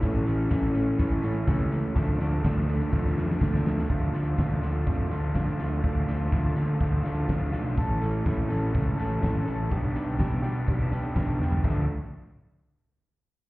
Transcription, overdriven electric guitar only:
\new Staff \with { instrumentName = "Overdriven electric guitar" } { \time 4/4 \key d \dorian \tempo 4 = 124 <e a cis'>8 <a cis'>8 <e a cis'>8 <a cis'>8 <e a cis'>8 <a cis'>8 <e a cis'>4 | <f a d'>8 <a d'>8 <f a d'>8 <a d'>8 <f a d'>8 <a d'>8 <f a d'>4 | <f a d' f'>8 <a d' f'>8 <f a d' f'>8 <f a d' f'>8 <f a d' f'>8 <f a d' f'>8 <f a d' f'>8 <a d' f'>8 | <f a d' f'>8 <a d' f'>8 <f a d' f'>8 <f a d' f'>8 <f a d' f'>8 <f a d' f'>8 <f a d' f'>8 <a d' f'>8 |
<e a cis' a'>8 <a cis' a'>8 <e a cis' a'>8 <e a cis' a'>8 <e a cis' a'>8 <e a cis' a'>8 <e a cis' a'>8 <a cis' a'>8 | <b d' g'>8 <d' g'>8 <b d' g'>8 <b d' g'>8 <b d' g'>8 <b d' g'>8 <b d' g'>8 <d' g'>8 | <f a d'>8 r2. r8 | }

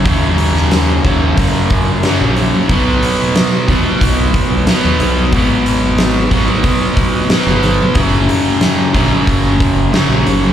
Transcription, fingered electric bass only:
\new Staff \with { instrumentName = "Fingered electric bass" } { \clef bass \time 4/4 \key b \major \tempo 4 = 91 dis,4. dis,8 fis,4~ fis,16 ais,,8 r16 | b,,8 r4 dis,16 r16 b,,8 r16 b,,16 r16 dis,16 b,,8 | gis,,4. gis,,8 b,4~ b,16 g,,8 r16 | fis,,8 r4 ais,,16 r16 fis,,8 r16 fis,,16 r16 ais,,16 fis,,8 | }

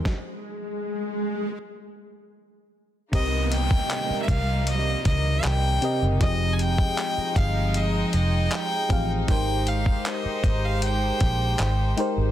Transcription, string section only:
\new Staff \with { instrumentName = "String section" } { \time 4/4 \key c \phrygian \tempo 4 = 78 r1 | <c g bes ees'>1 | <f aes g''>1 | <aes g' c''>1 | }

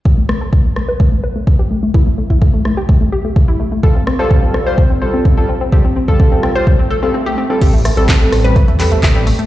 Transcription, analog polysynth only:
\new Staff \with { instrumentName = "Analog polysynth" } { \time 4/4 \key a \minor \tempo 4 = 127 r1 | r1 | <g f' a'>16 r8 <g f' a'>4 <g f' c''>16 r8 <g f' a'>8. <g f' a'>16 r8 | <g f' a'>16 r8 <g f' a'>4 <g f' c''>16 r8. <g f' a'>16 r8. <g f' a'>16 |
<g c' a'>16 r8 <g c' a'>4 <g c' b'>16 r8 <g c' a'>8. <g c' a'>16 r8 | }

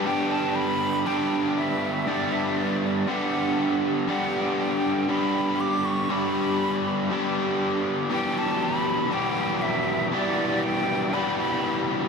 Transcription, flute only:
\new Staff \with { instrumentName = "Flute" } { \time 4/4 \key g \major \tempo 4 = 119 g''8 a''8 b''4 g''4 e''4 | d''8 e''8 d''8 d''8 fis''4. r8 | fis''8 g''8 g''4 b''4 d'''8 cis'''8 | b''2 r2 |
g''8 a''8 b''4 g''4 e''4 | d''4 g''4 b''8 b''4 r8 | }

